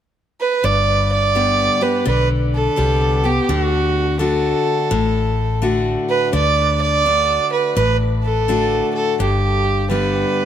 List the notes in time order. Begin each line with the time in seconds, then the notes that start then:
0.41 B4
0.64 G1 G2 D5
1.12 D5
1.35 D3 G3 B3 G4
1.81 B3 G4 B4
2.06 B1 D3 B4
2.55 A4
2.76 C2 D3 G3 B3 G4
3.24 B3 G4
3.49 D2 D3 F#4
4.19 D3 A3 D4 F#4 A4
4.91 A1 A2
5.62 D3 A3 D4 F#4
6.09 B4
6.33 D2 D3 D5
6.82 D5
7.05 D3 A3 D4 F#4
7.52 B4
7.76 A1 A2 B4
8.24 A4
8.48 D3 A3 D4 F#4
8.94 A4
9.20 G1 G2 G4
9.90 D3 G3 B3 G4 B4